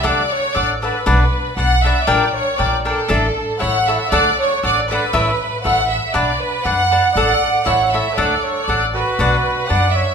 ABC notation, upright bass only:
X:1
M:2/4
L:1/8
Q:"Swing" 1/4=118
K:D
V:1 name="Upright bass" clef=bass
D,, z A,,,2 | B,,, z B,,,2 | _B,,, z B,,,2 | A,,, z A,,,2 |
D,, z A,,,2 | A,,, z A,,,2 | B,,, z F,,2 | A,,, z A,,,2 |
D,, z A,,,2 | B,,, z F,,2 |]